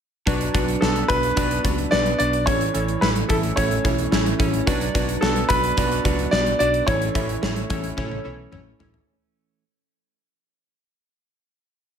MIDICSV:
0, 0, Header, 1, 6, 480
1, 0, Start_track
1, 0, Key_signature, 2, "minor"
1, 0, Tempo, 550459
1, 235, Time_signature, 4, 2, 24, 8
1, 10448, End_track
2, 0, Start_track
2, 0, Title_t, "Grand piano"
2, 0, Program_c, 0, 0
2, 703, Note_on_c, 0, 69, 81
2, 945, Note_on_c, 0, 71, 110
2, 956, Note_off_c, 0, 69, 0
2, 1396, Note_off_c, 0, 71, 0
2, 1664, Note_on_c, 0, 74, 102
2, 1892, Note_off_c, 0, 74, 0
2, 1905, Note_on_c, 0, 74, 99
2, 2132, Note_off_c, 0, 74, 0
2, 2143, Note_on_c, 0, 73, 91
2, 2595, Note_off_c, 0, 73, 0
2, 2626, Note_on_c, 0, 71, 84
2, 2681, Note_off_c, 0, 71, 0
2, 2866, Note_on_c, 0, 69, 78
2, 2921, Note_off_c, 0, 69, 0
2, 3103, Note_on_c, 0, 73, 80
2, 3794, Note_off_c, 0, 73, 0
2, 4543, Note_on_c, 0, 69, 86
2, 4784, Note_on_c, 0, 71, 114
2, 4796, Note_off_c, 0, 69, 0
2, 5235, Note_off_c, 0, 71, 0
2, 5505, Note_on_c, 0, 74, 99
2, 5734, Note_off_c, 0, 74, 0
2, 5747, Note_on_c, 0, 74, 97
2, 5973, Note_off_c, 0, 74, 0
2, 5987, Note_on_c, 0, 73, 90
2, 7396, Note_off_c, 0, 73, 0
2, 10448, End_track
3, 0, Start_track
3, 0, Title_t, "Synth keys"
3, 0, Program_c, 1, 88
3, 229, Note_on_c, 1, 62, 98
3, 232, Note_on_c, 1, 66, 89
3, 234, Note_on_c, 1, 47, 65
3, 236, Note_on_c, 1, 71, 93
3, 240, Note_on_c, 1, 74, 105
3, 388, Control_c, 1, 64, 127
3, 389, Note_off_c, 1, 62, 0
3, 391, Note_off_c, 1, 66, 0
3, 392, Note_off_c, 1, 71, 0
3, 394, Note_off_c, 1, 74, 0
3, 467, Note_on_c, 1, 62, 76
3, 471, Note_on_c, 1, 66, 74
3, 475, Note_on_c, 1, 71, 73
3, 478, Note_on_c, 1, 74, 84
3, 628, Note_off_c, 1, 62, 0
3, 630, Note_off_c, 1, 66, 0
3, 632, Note_off_c, 1, 71, 0
3, 633, Note_off_c, 1, 74, 0
3, 708, Note_on_c, 1, 62, 65
3, 712, Note_on_c, 1, 66, 60
3, 716, Note_on_c, 1, 71, 58
3, 718, Note_on_c, 1, 74, 71
3, 869, Note_off_c, 1, 62, 0
3, 870, Note_off_c, 1, 66, 0
3, 872, Note_off_c, 1, 71, 0
3, 873, Note_off_c, 1, 74, 0
3, 919, Note_off_c, 1, 47, 0
3, 948, Note_on_c, 1, 62, 66
3, 952, Note_on_c, 1, 66, 59
3, 955, Note_on_c, 1, 71, 63
3, 958, Note_on_c, 1, 74, 72
3, 1109, Note_off_c, 1, 62, 0
3, 1110, Note_off_c, 1, 66, 0
3, 1112, Note_off_c, 1, 71, 0
3, 1113, Note_off_c, 1, 74, 0
3, 1186, Note_on_c, 1, 62, 86
3, 1189, Note_on_c, 1, 66, 77
3, 1193, Note_on_c, 1, 71, 81
3, 1197, Note_on_c, 1, 74, 100
3, 1348, Note_off_c, 1, 62, 0
3, 1349, Note_off_c, 1, 66, 0
3, 1351, Note_off_c, 1, 71, 0
3, 1353, Note_off_c, 1, 74, 0
3, 1427, Note_on_c, 1, 62, 67
3, 1430, Note_on_c, 1, 66, 61
3, 1434, Note_on_c, 1, 71, 59
3, 1437, Note_on_c, 1, 74, 73
3, 1588, Note_off_c, 1, 62, 0
3, 1590, Note_off_c, 1, 66, 0
3, 1591, Note_off_c, 1, 71, 0
3, 1593, Note_off_c, 1, 74, 0
3, 1667, Note_on_c, 1, 62, 67
3, 1668, Note_on_c, 1, 66, 62
3, 1672, Note_on_c, 1, 71, 64
3, 1675, Note_on_c, 1, 74, 79
3, 1828, Note_off_c, 1, 62, 0
3, 1829, Note_off_c, 1, 66, 0
3, 1831, Note_off_c, 1, 71, 0
3, 1832, Note_off_c, 1, 74, 0
3, 1907, Note_on_c, 1, 62, 67
3, 1909, Note_on_c, 1, 66, 60
3, 1913, Note_on_c, 1, 71, 64
3, 1917, Note_on_c, 1, 74, 71
3, 2068, Note_off_c, 1, 62, 0
3, 2069, Note_off_c, 1, 66, 0
3, 2071, Note_off_c, 1, 71, 0
3, 2073, Note_off_c, 1, 74, 0
3, 2146, Note_on_c, 1, 61, 86
3, 2150, Note_on_c, 1, 64, 81
3, 2151, Note_on_c, 1, 45, 57
3, 2153, Note_on_c, 1, 69, 78
3, 2157, Note_on_c, 1, 73, 93
3, 2167, Control_c, 1, 64, 0
3, 2308, Note_off_c, 1, 61, 0
3, 2310, Note_off_c, 1, 64, 0
3, 2311, Note_off_c, 1, 69, 0
3, 2313, Note_off_c, 1, 73, 0
3, 2338, Control_c, 1, 64, 127
3, 2386, Note_on_c, 1, 61, 70
3, 2390, Note_on_c, 1, 64, 65
3, 2394, Note_on_c, 1, 69, 66
3, 2397, Note_on_c, 1, 73, 77
3, 2548, Note_off_c, 1, 61, 0
3, 2550, Note_off_c, 1, 64, 0
3, 2551, Note_off_c, 1, 69, 0
3, 2553, Note_off_c, 1, 73, 0
3, 2628, Note_on_c, 1, 61, 65
3, 2631, Note_on_c, 1, 64, 60
3, 2635, Note_on_c, 1, 69, 63
3, 2638, Note_on_c, 1, 73, 74
3, 2788, Note_off_c, 1, 61, 0
3, 2790, Note_off_c, 1, 64, 0
3, 2792, Note_off_c, 1, 69, 0
3, 2793, Note_off_c, 1, 73, 0
3, 2838, Note_off_c, 1, 45, 0
3, 2868, Note_on_c, 1, 61, 65
3, 2871, Note_on_c, 1, 64, 65
3, 2874, Note_on_c, 1, 69, 64
3, 2878, Note_on_c, 1, 76, 77
3, 3029, Note_off_c, 1, 61, 0
3, 3030, Note_off_c, 1, 64, 0
3, 3032, Note_off_c, 1, 69, 0
3, 3033, Note_off_c, 1, 76, 0
3, 3108, Note_on_c, 1, 61, 88
3, 3111, Note_on_c, 1, 64, 78
3, 3115, Note_on_c, 1, 69, 81
3, 3118, Note_on_c, 1, 73, 99
3, 3268, Note_off_c, 1, 61, 0
3, 3270, Note_off_c, 1, 64, 0
3, 3272, Note_off_c, 1, 69, 0
3, 3273, Note_off_c, 1, 73, 0
3, 3347, Note_on_c, 1, 61, 65
3, 3351, Note_on_c, 1, 64, 63
3, 3353, Note_on_c, 1, 69, 62
3, 3358, Note_on_c, 1, 73, 78
3, 3508, Note_off_c, 1, 61, 0
3, 3510, Note_off_c, 1, 64, 0
3, 3511, Note_off_c, 1, 69, 0
3, 3513, Note_off_c, 1, 73, 0
3, 3586, Note_on_c, 1, 61, 71
3, 3589, Note_on_c, 1, 64, 63
3, 3593, Note_on_c, 1, 69, 61
3, 3597, Note_on_c, 1, 73, 75
3, 3748, Note_off_c, 1, 61, 0
3, 3749, Note_off_c, 1, 64, 0
3, 3751, Note_off_c, 1, 69, 0
3, 3753, Note_off_c, 1, 73, 0
3, 3825, Note_on_c, 1, 61, 79
3, 3828, Note_on_c, 1, 64, 78
3, 3832, Note_on_c, 1, 69, 72
3, 3835, Note_on_c, 1, 73, 89
3, 3987, Note_off_c, 1, 61, 0
3, 3989, Note_off_c, 1, 64, 0
3, 3991, Note_off_c, 1, 69, 0
3, 3992, Note_off_c, 1, 73, 0
3, 4068, Note_on_c, 1, 62, 100
3, 4071, Note_on_c, 1, 66, 94
3, 4073, Note_on_c, 1, 47, 72
3, 4074, Note_on_c, 1, 71, 97
3, 4078, Note_on_c, 1, 74, 108
3, 4085, Control_c, 1, 64, 0
3, 4229, Note_off_c, 1, 62, 0
3, 4230, Note_off_c, 1, 66, 0
3, 4232, Note_off_c, 1, 71, 0
3, 4232, Control_c, 1, 64, 127
3, 4233, Note_off_c, 1, 74, 0
3, 4308, Note_on_c, 1, 62, 80
3, 4310, Note_on_c, 1, 66, 77
3, 4314, Note_on_c, 1, 71, 78
3, 4317, Note_on_c, 1, 74, 89
3, 4469, Note_off_c, 1, 62, 0
3, 4470, Note_off_c, 1, 66, 0
3, 4472, Note_off_c, 1, 71, 0
3, 4473, Note_off_c, 1, 74, 0
3, 4549, Note_on_c, 1, 62, 68
3, 4552, Note_on_c, 1, 66, 61
3, 4555, Note_on_c, 1, 71, 64
3, 4559, Note_on_c, 1, 74, 73
3, 4709, Note_off_c, 1, 62, 0
3, 4711, Note_off_c, 1, 66, 0
3, 4712, Note_off_c, 1, 71, 0
3, 4714, Note_off_c, 1, 74, 0
3, 4759, Note_off_c, 1, 47, 0
3, 4789, Note_on_c, 1, 62, 70
3, 4794, Note_on_c, 1, 66, 65
3, 4797, Note_on_c, 1, 71, 64
3, 4800, Note_on_c, 1, 74, 78
3, 4949, Note_off_c, 1, 62, 0
3, 4951, Note_off_c, 1, 66, 0
3, 4953, Note_off_c, 1, 71, 0
3, 4954, Note_off_c, 1, 74, 0
3, 5027, Note_on_c, 1, 62, 87
3, 5031, Note_on_c, 1, 66, 78
3, 5034, Note_on_c, 1, 71, 82
3, 5038, Note_on_c, 1, 74, 98
3, 5188, Note_off_c, 1, 62, 0
3, 5190, Note_off_c, 1, 66, 0
3, 5192, Note_off_c, 1, 71, 0
3, 5194, Note_off_c, 1, 74, 0
3, 5267, Note_on_c, 1, 62, 67
3, 5271, Note_on_c, 1, 66, 65
3, 5274, Note_on_c, 1, 71, 63
3, 5277, Note_on_c, 1, 74, 78
3, 5428, Note_off_c, 1, 62, 0
3, 5430, Note_off_c, 1, 66, 0
3, 5432, Note_off_c, 1, 71, 0
3, 5433, Note_off_c, 1, 74, 0
3, 5510, Note_on_c, 1, 62, 67
3, 5514, Note_on_c, 1, 66, 64
3, 5517, Note_on_c, 1, 71, 60
3, 5521, Note_on_c, 1, 74, 74
3, 5670, Note_off_c, 1, 62, 0
3, 5671, Note_off_c, 1, 66, 0
3, 5673, Note_off_c, 1, 71, 0
3, 5675, Note_off_c, 1, 74, 0
3, 5749, Note_on_c, 1, 62, 65
3, 5753, Note_on_c, 1, 66, 64
3, 5755, Note_on_c, 1, 71, 64
3, 5760, Note_on_c, 1, 74, 76
3, 5909, Note_off_c, 1, 62, 0
3, 5911, Note_off_c, 1, 66, 0
3, 5912, Note_off_c, 1, 71, 0
3, 5915, Note_off_c, 1, 74, 0
3, 5987, Note_on_c, 1, 61, 83
3, 5991, Note_on_c, 1, 64, 82
3, 5992, Note_on_c, 1, 45, 56
3, 5995, Note_on_c, 1, 69, 75
3, 5997, Note_on_c, 1, 73, 91
3, 6006, Control_c, 1, 64, 0
3, 6141, Control_c, 1, 64, 127
3, 6148, Note_off_c, 1, 61, 0
3, 6150, Note_off_c, 1, 64, 0
3, 6152, Note_off_c, 1, 69, 0
3, 6153, Note_off_c, 1, 73, 0
3, 6227, Note_on_c, 1, 61, 73
3, 6230, Note_on_c, 1, 64, 65
3, 6235, Note_on_c, 1, 69, 60
3, 6237, Note_on_c, 1, 76, 77
3, 6388, Note_off_c, 1, 61, 0
3, 6390, Note_off_c, 1, 64, 0
3, 6392, Note_off_c, 1, 69, 0
3, 6393, Note_off_c, 1, 76, 0
3, 6467, Note_on_c, 1, 61, 64
3, 6470, Note_on_c, 1, 64, 60
3, 6473, Note_on_c, 1, 69, 59
3, 6478, Note_on_c, 1, 73, 75
3, 6628, Note_off_c, 1, 61, 0
3, 6629, Note_off_c, 1, 64, 0
3, 6631, Note_off_c, 1, 69, 0
3, 6633, Note_off_c, 1, 73, 0
3, 6679, Note_off_c, 1, 45, 0
3, 6708, Note_on_c, 1, 61, 82
3, 6711, Note_on_c, 1, 64, 77
3, 6714, Note_on_c, 1, 69, 76
3, 6717, Note_on_c, 1, 73, 92
3, 6868, Note_off_c, 1, 61, 0
3, 6870, Note_off_c, 1, 64, 0
3, 6871, Note_off_c, 1, 69, 0
3, 6873, Note_off_c, 1, 73, 0
3, 6948, Note_on_c, 1, 61, 100
3, 6950, Note_on_c, 1, 64, 99
3, 6954, Note_on_c, 1, 69, 95
3, 6958, Note_on_c, 1, 73, 109
3, 7108, Note_off_c, 1, 61, 0
3, 7109, Note_off_c, 1, 64, 0
3, 7112, Note_off_c, 1, 69, 0
3, 7114, Note_off_c, 1, 73, 0
3, 7184, Note_on_c, 1, 61, 79
3, 7189, Note_on_c, 1, 64, 71
3, 7193, Note_on_c, 1, 69, 75
3, 7196, Note_on_c, 1, 73, 86
3, 7347, Note_off_c, 1, 61, 0
3, 7349, Note_off_c, 1, 64, 0
3, 7351, Note_off_c, 1, 69, 0
3, 7352, Note_off_c, 1, 73, 0
3, 7426, Note_on_c, 1, 61, 85
3, 7428, Note_on_c, 1, 64, 77
3, 7432, Note_on_c, 1, 69, 73
3, 7436, Note_on_c, 1, 73, 91
3, 7587, Note_off_c, 1, 61, 0
3, 7588, Note_off_c, 1, 64, 0
3, 7591, Note_off_c, 1, 69, 0
3, 7592, Note_off_c, 1, 73, 0
3, 7667, Note_on_c, 1, 61, 79
3, 7671, Note_on_c, 1, 64, 73
3, 7674, Note_on_c, 1, 69, 73
3, 7677, Note_on_c, 1, 73, 85
3, 7828, Note_off_c, 1, 61, 0
3, 7830, Note_off_c, 1, 64, 0
3, 7831, Note_off_c, 1, 69, 0
3, 7833, Note_off_c, 1, 73, 0
3, 7926, Control_c, 1, 64, 0
3, 10448, End_track
4, 0, Start_track
4, 0, Title_t, "Clean electric guitar"
4, 0, Program_c, 2, 27
4, 234, Note_on_c, 2, 54, 74
4, 464, Note_off_c, 2, 54, 0
4, 475, Note_on_c, 2, 54, 49
4, 713, Note_on_c, 2, 59, 58
4, 943, Note_off_c, 2, 54, 0
4, 953, Note_on_c, 2, 54, 54
4, 1182, Note_off_c, 2, 59, 0
4, 1193, Note_on_c, 2, 59, 59
4, 1421, Note_off_c, 2, 54, 0
4, 1432, Note_on_c, 2, 54, 52
4, 1662, Note_off_c, 2, 59, 0
4, 1673, Note_on_c, 2, 59, 61
4, 1913, Note_on_c, 2, 62, 59
4, 2150, Note_off_c, 2, 54, 0
4, 2153, Note_on_c, 2, 52, 76
4, 2202, Note_off_c, 2, 59, 0
4, 2202, Note_off_c, 2, 62, 0
4, 2383, Note_off_c, 2, 52, 0
4, 2393, Note_on_c, 2, 52, 51
4, 2633, Note_on_c, 2, 57, 59
4, 2864, Note_off_c, 2, 52, 0
4, 2875, Note_on_c, 2, 52, 56
4, 3104, Note_off_c, 2, 57, 0
4, 3115, Note_on_c, 2, 57, 59
4, 3343, Note_off_c, 2, 52, 0
4, 3353, Note_on_c, 2, 52, 55
4, 3583, Note_off_c, 2, 57, 0
4, 3594, Note_on_c, 2, 57, 64
4, 3834, Note_on_c, 2, 61, 64
4, 4071, Note_off_c, 2, 52, 0
4, 4074, Note_on_c, 2, 54, 76
4, 4122, Note_off_c, 2, 57, 0
4, 4122, Note_off_c, 2, 61, 0
4, 4303, Note_off_c, 2, 54, 0
4, 4314, Note_on_c, 2, 54, 52
4, 4553, Note_on_c, 2, 59, 61
4, 4784, Note_off_c, 2, 54, 0
4, 4795, Note_on_c, 2, 54, 59
4, 5025, Note_off_c, 2, 59, 0
4, 5036, Note_on_c, 2, 59, 59
4, 5264, Note_off_c, 2, 54, 0
4, 5274, Note_on_c, 2, 54, 54
4, 5505, Note_off_c, 2, 59, 0
4, 5515, Note_on_c, 2, 59, 61
4, 5754, Note_on_c, 2, 62, 64
4, 5990, Note_off_c, 2, 54, 0
4, 5993, Note_on_c, 2, 52, 81
4, 6042, Note_off_c, 2, 62, 0
4, 6043, Note_off_c, 2, 59, 0
4, 6232, Note_off_c, 2, 52, 0
4, 6235, Note_on_c, 2, 52, 54
4, 6474, Note_on_c, 2, 57, 61
4, 6712, Note_off_c, 2, 52, 0
4, 6716, Note_on_c, 2, 52, 54
4, 6951, Note_off_c, 2, 57, 0
4, 6955, Note_on_c, 2, 57, 56
4, 7192, Note_off_c, 2, 52, 0
4, 7195, Note_on_c, 2, 52, 53
4, 7430, Note_off_c, 2, 57, 0
4, 7433, Note_on_c, 2, 57, 57
4, 7674, Note_on_c, 2, 61, 58
4, 8398, Note_off_c, 2, 57, 0
4, 8398, Note_off_c, 2, 61, 0
4, 8399, Note_off_c, 2, 52, 0
4, 10448, End_track
5, 0, Start_track
5, 0, Title_t, "Fretless electric bass"
5, 0, Program_c, 3, 35
5, 235, Note_on_c, 3, 35, 91
5, 408, Note_off_c, 3, 35, 0
5, 475, Note_on_c, 3, 35, 89
5, 648, Note_off_c, 3, 35, 0
5, 715, Note_on_c, 3, 35, 97
5, 887, Note_off_c, 3, 35, 0
5, 958, Note_on_c, 3, 35, 77
5, 1129, Note_off_c, 3, 35, 0
5, 1195, Note_on_c, 3, 35, 90
5, 1368, Note_off_c, 3, 35, 0
5, 1435, Note_on_c, 3, 37, 80
5, 1608, Note_off_c, 3, 37, 0
5, 1675, Note_on_c, 3, 35, 90
5, 1847, Note_off_c, 3, 35, 0
5, 1916, Note_on_c, 3, 35, 90
5, 2155, Note_off_c, 3, 35, 0
5, 2155, Note_on_c, 3, 33, 98
5, 2327, Note_off_c, 3, 33, 0
5, 2394, Note_on_c, 3, 33, 80
5, 2567, Note_off_c, 3, 33, 0
5, 2633, Note_on_c, 3, 33, 90
5, 2806, Note_off_c, 3, 33, 0
5, 2877, Note_on_c, 3, 33, 87
5, 3049, Note_off_c, 3, 33, 0
5, 3116, Note_on_c, 3, 33, 95
5, 3288, Note_off_c, 3, 33, 0
5, 3355, Note_on_c, 3, 35, 78
5, 3528, Note_off_c, 3, 35, 0
5, 3592, Note_on_c, 3, 33, 95
5, 3766, Note_off_c, 3, 33, 0
5, 3834, Note_on_c, 3, 33, 95
5, 4007, Note_off_c, 3, 33, 0
5, 4074, Note_on_c, 3, 35, 92
5, 4247, Note_off_c, 3, 35, 0
5, 4317, Note_on_c, 3, 35, 94
5, 4489, Note_off_c, 3, 35, 0
5, 4551, Note_on_c, 3, 35, 100
5, 4725, Note_off_c, 3, 35, 0
5, 4797, Note_on_c, 3, 35, 83
5, 4969, Note_off_c, 3, 35, 0
5, 5037, Note_on_c, 3, 35, 96
5, 5209, Note_off_c, 3, 35, 0
5, 5276, Note_on_c, 3, 37, 81
5, 5448, Note_off_c, 3, 37, 0
5, 5513, Note_on_c, 3, 35, 94
5, 5686, Note_off_c, 3, 35, 0
5, 5755, Note_on_c, 3, 35, 87
5, 5927, Note_off_c, 3, 35, 0
5, 5996, Note_on_c, 3, 33, 96
5, 6168, Note_off_c, 3, 33, 0
5, 6236, Note_on_c, 3, 33, 88
5, 6408, Note_off_c, 3, 33, 0
5, 6474, Note_on_c, 3, 33, 99
5, 6647, Note_off_c, 3, 33, 0
5, 6718, Note_on_c, 3, 33, 90
5, 6889, Note_off_c, 3, 33, 0
5, 6956, Note_on_c, 3, 33, 92
5, 7129, Note_off_c, 3, 33, 0
5, 7195, Note_on_c, 3, 35, 85
5, 7368, Note_off_c, 3, 35, 0
5, 7436, Note_on_c, 3, 33, 98
5, 7608, Note_off_c, 3, 33, 0
5, 7676, Note_on_c, 3, 33, 93
5, 7848, Note_off_c, 3, 33, 0
5, 10448, End_track
6, 0, Start_track
6, 0, Title_t, "Drums"
6, 235, Note_on_c, 9, 36, 98
6, 235, Note_on_c, 9, 42, 75
6, 322, Note_off_c, 9, 36, 0
6, 322, Note_off_c, 9, 42, 0
6, 355, Note_on_c, 9, 42, 58
6, 443, Note_off_c, 9, 42, 0
6, 474, Note_on_c, 9, 42, 61
6, 476, Note_on_c, 9, 36, 84
6, 562, Note_off_c, 9, 42, 0
6, 563, Note_off_c, 9, 36, 0
6, 596, Note_on_c, 9, 42, 49
6, 683, Note_off_c, 9, 42, 0
6, 717, Note_on_c, 9, 38, 97
6, 804, Note_off_c, 9, 38, 0
6, 834, Note_on_c, 9, 42, 42
6, 921, Note_off_c, 9, 42, 0
6, 954, Note_on_c, 9, 42, 71
6, 957, Note_on_c, 9, 36, 78
6, 1041, Note_off_c, 9, 42, 0
6, 1044, Note_off_c, 9, 36, 0
6, 1073, Note_on_c, 9, 42, 49
6, 1160, Note_off_c, 9, 42, 0
6, 1193, Note_on_c, 9, 42, 74
6, 1196, Note_on_c, 9, 36, 80
6, 1280, Note_off_c, 9, 42, 0
6, 1283, Note_off_c, 9, 36, 0
6, 1316, Note_on_c, 9, 42, 50
6, 1403, Note_off_c, 9, 42, 0
6, 1435, Note_on_c, 9, 36, 81
6, 1435, Note_on_c, 9, 42, 62
6, 1522, Note_off_c, 9, 42, 0
6, 1523, Note_off_c, 9, 36, 0
6, 1554, Note_on_c, 9, 42, 43
6, 1641, Note_off_c, 9, 42, 0
6, 1675, Note_on_c, 9, 38, 94
6, 1762, Note_off_c, 9, 38, 0
6, 1795, Note_on_c, 9, 42, 41
6, 1882, Note_off_c, 9, 42, 0
6, 1916, Note_on_c, 9, 42, 75
6, 2003, Note_off_c, 9, 42, 0
6, 2034, Note_on_c, 9, 42, 42
6, 2121, Note_off_c, 9, 42, 0
6, 2154, Note_on_c, 9, 42, 83
6, 2155, Note_on_c, 9, 36, 98
6, 2241, Note_off_c, 9, 42, 0
6, 2242, Note_off_c, 9, 36, 0
6, 2275, Note_on_c, 9, 42, 55
6, 2362, Note_off_c, 9, 42, 0
6, 2394, Note_on_c, 9, 42, 63
6, 2481, Note_off_c, 9, 42, 0
6, 2514, Note_on_c, 9, 42, 48
6, 2602, Note_off_c, 9, 42, 0
6, 2635, Note_on_c, 9, 38, 105
6, 2723, Note_off_c, 9, 38, 0
6, 2752, Note_on_c, 9, 42, 43
6, 2839, Note_off_c, 9, 42, 0
6, 2873, Note_on_c, 9, 42, 64
6, 2877, Note_on_c, 9, 36, 82
6, 2960, Note_off_c, 9, 42, 0
6, 2964, Note_off_c, 9, 36, 0
6, 2993, Note_on_c, 9, 42, 51
6, 3081, Note_off_c, 9, 42, 0
6, 3114, Note_on_c, 9, 42, 81
6, 3116, Note_on_c, 9, 36, 75
6, 3201, Note_off_c, 9, 42, 0
6, 3204, Note_off_c, 9, 36, 0
6, 3236, Note_on_c, 9, 42, 47
6, 3324, Note_off_c, 9, 42, 0
6, 3355, Note_on_c, 9, 42, 62
6, 3356, Note_on_c, 9, 36, 76
6, 3442, Note_off_c, 9, 42, 0
6, 3443, Note_off_c, 9, 36, 0
6, 3475, Note_on_c, 9, 42, 46
6, 3562, Note_off_c, 9, 42, 0
6, 3595, Note_on_c, 9, 38, 96
6, 3683, Note_off_c, 9, 38, 0
6, 3716, Note_on_c, 9, 42, 41
6, 3803, Note_off_c, 9, 42, 0
6, 3834, Note_on_c, 9, 36, 86
6, 3836, Note_on_c, 9, 42, 77
6, 3921, Note_off_c, 9, 36, 0
6, 3923, Note_off_c, 9, 42, 0
6, 3955, Note_on_c, 9, 42, 41
6, 4042, Note_off_c, 9, 42, 0
6, 4075, Note_on_c, 9, 36, 103
6, 4075, Note_on_c, 9, 42, 83
6, 4162, Note_off_c, 9, 36, 0
6, 4162, Note_off_c, 9, 42, 0
6, 4195, Note_on_c, 9, 42, 55
6, 4282, Note_off_c, 9, 42, 0
6, 4315, Note_on_c, 9, 42, 64
6, 4316, Note_on_c, 9, 36, 82
6, 4402, Note_off_c, 9, 42, 0
6, 4404, Note_off_c, 9, 36, 0
6, 4436, Note_on_c, 9, 42, 48
6, 4523, Note_off_c, 9, 42, 0
6, 4557, Note_on_c, 9, 38, 112
6, 4644, Note_off_c, 9, 38, 0
6, 4673, Note_on_c, 9, 42, 45
6, 4760, Note_off_c, 9, 42, 0
6, 4793, Note_on_c, 9, 42, 70
6, 4797, Note_on_c, 9, 36, 78
6, 4880, Note_off_c, 9, 42, 0
6, 4885, Note_off_c, 9, 36, 0
6, 4914, Note_on_c, 9, 42, 48
6, 5001, Note_off_c, 9, 42, 0
6, 5034, Note_on_c, 9, 42, 82
6, 5037, Note_on_c, 9, 36, 85
6, 5122, Note_off_c, 9, 42, 0
6, 5124, Note_off_c, 9, 36, 0
6, 5158, Note_on_c, 9, 42, 52
6, 5245, Note_off_c, 9, 42, 0
6, 5276, Note_on_c, 9, 42, 59
6, 5277, Note_on_c, 9, 36, 83
6, 5363, Note_off_c, 9, 42, 0
6, 5364, Note_off_c, 9, 36, 0
6, 5396, Note_on_c, 9, 42, 47
6, 5483, Note_off_c, 9, 42, 0
6, 5516, Note_on_c, 9, 38, 99
6, 5604, Note_off_c, 9, 38, 0
6, 5637, Note_on_c, 9, 42, 39
6, 5724, Note_off_c, 9, 42, 0
6, 5757, Note_on_c, 9, 42, 81
6, 5844, Note_off_c, 9, 42, 0
6, 5877, Note_on_c, 9, 42, 42
6, 5964, Note_off_c, 9, 42, 0
6, 5996, Note_on_c, 9, 36, 107
6, 5997, Note_on_c, 9, 42, 77
6, 6084, Note_off_c, 9, 36, 0
6, 6084, Note_off_c, 9, 42, 0
6, 6118, Note_on_c, 9, 42, 56
6, 6205, Note_off_c, 9, 42, 0
6, 6236, Note_on_c, 9, 42, 64
6, 6237, Note_on_c, 9, 36, 85
6, 6323, Note_off_c, 9, 42, 0
6, 6324, Note_off_c, 9, 36, 0
6, 6358, Note_on_c, 9, 42, 48
6, 6445, Note_off_c, 9, 42, 0
6, 6478, Note_on_c, 9, 38, 111
6, 6565, Note_off_c, 9, 38, 0
6, 6594, Note_on_c, 9, 42, 43
6, 6681, Note_off_c, 9, 42, 0
6, 6714, Note_on_c, 9, 42, 67
6, 6718, Note_on_c, 9, 36, 81
6, 6801, Note_off_c, 9, 42, 0
6, 6805, Note_off_c, 9, 36, 0
6, 6833, Note_on_c, 9, 42, 52
6, 6920, Note_off_c, 9, 42, 0
6, 6956, Note_on_c, 9, 36, 79
6, 6956, Note_on_c, 9, 48, 48
6, 7043, Note_off_c, 9, 36, 0
6, 7043, Note_off_c, 9, 48, 0
6, 7076, Note_on_c, 9, 48, 48
6, 7163, Note_off_c, 9, 48, 0
6, 7434, Note_on_c, 9, 45, 75
6, 7521, Note_off_c, 9, 45, 0
6, 7675, Note_on_c, 9, 43, 91
6, 7762, Note_off_c, 9, 43, 0
6, 7795, Note_on_c, 9, 43, 72
6, 7882, Note_off_c, 9, 43, 0
6, 10448, End_track
0, 0, End_of_file